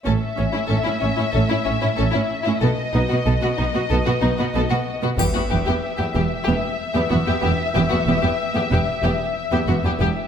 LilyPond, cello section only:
\new Staff \with { instrumentName = "Cello section" } { \clef bass \time 4/4 \key b \minor \tempo 4 = 93 a,16 r16 a,16 a,16 a,16 a,16 a,16 a,16 a,16 a,16 a,16 a,16 a,16 a,16 r16 a,16 | b,16 r16 b,16 b,16 b,16 b,16 b,16 b,16 b,16 b,16 b,16 b,16 b,16 b,16 r16 b,16 | \key e \minor e,16 e,16 e,16 e,16 r16 e,16 e,16 r16 e,16 r8 e,16 e,16 e,16 e,16 r16 | e,16 e,16 e,16 e,16 r16 e,16 e,16 r16 e,16 r8 e,16 e,16 e,16 e,16 r16 | }